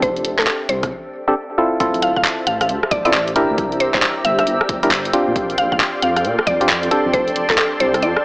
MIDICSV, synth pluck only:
0, 0, Header, 1, 2, 480
1, 0, Start_track
1, 0, Key_signature, -1, "minor"
1, 0, Tempo, 444444
1, 26, Time_signature, 4, 2, 24, 8
1, 8909, End_track
2, 0, Start_track
2, 0, Title_t, "Synth pluck"
2, 0, Program_c, 0, 84
2, 25, Note_on_c, 0, 72, 90
2, 178, Note_off_c, 0, 72, 0
2, 417, Note_on_c, 0, 69, 88
2, 474, Note_off_c, 0, 69, 0
2, 505, Note_on_c, 0, 69, 76
2, 603, Note_off_c, 0, 69, 0
2, 745, Note_on_c, 0, 72, 89
2, 968, Note_off_c, 0, 72, 0
2, 2186, Note_on_c, 0, 77, 88
2, 2283, Note_off_c, 0, 77, 0
2, 2337, Note_on_c, 0, 77, 80
2, 2394, Note_off_c, 0, 77, 0
2, 2665, Note_on_c, 0, 77, 89
2, 2762, Note_off_c, 0, 77, 0
2, 2817, Note_on_c, 0, 77, 76
2, 2874, Note_off_c, 0, 77, 0
2, 3144, Note_on_c, 0, 74, 90
2, 3267, Note_off_c, 0, 74, 0
2, 3295, Note_on_c, 0, 74, 91
2, 3353, Note_off_c, 0, 74, 0
2, 3384, Note_on_c, 0, 74, 79
2, 3482, Note_off_c, 0, 74, 0
2, 4105, Note_on_c, 0, 72, 90
2, 4203, Note_off_c, 0, 72, 0
2, 4256, Note_on_c, 0, 72, 77
2, 4313, Note_off_c, 0, 72, 0
2, 4585, Note_on_c, 0, 76, 89
2, 4683, Note_off_c, 0, 76, 0
2, 4736, Note_on_c, 0, 76, 76
2, 4793, Note_off_c, 0, 76, 0
2, 6026, Note_on_c, 0, 77, 90
2, 6123, Note_off_c, 0, 77, 0
2, 6178, Note_on_c, 0, 77, 77
2, 6234, Note_off_c, 0, 77, 0
2, 6507, Note_on_c, 0, 77, 86
2, 6603, Note_off_c, 0, 77, 0
2, 6657, Note_on_c, 0, 77, 75
2, 6714, Note_off_c, 0, 77, 0
2, 6985, Note_on_c, 0, 74, 93
2, 7107, Note_off_c, 0, 74, 0
2, 7705, Note_on_c, 0, 72, 91
2, 7858, Note_off_c, 0, 72, 0
2, 8097, Note_on_c, 0, 69, 93
2, 8154, Note_off_c, 0, 69, 0
2, 8186, Note_on_c, 0, 69, 77
2, 8283, Note_off_c, 0, 69, 0
2, 8426, Note_on_c, 0, 72, 91
2, 8649, Note_off_c, 0, 72, 0
2, 8667, Note_on_c, 0, 74, 94
2, 8909, Note_off_c, 0, 74, 0
2, 8909, End_track
0, 0, End_of_file